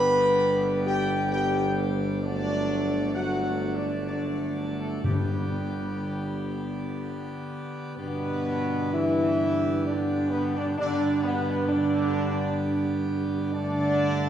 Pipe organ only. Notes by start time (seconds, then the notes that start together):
Already playing: D3 G3 G4 D5
2.23 A3 F#4
5.04 D3 B3 G4 D5
7.97 D3 B3 G4 D5
10.79 D3 B3 G4 D5
13.54 D3 A3 A4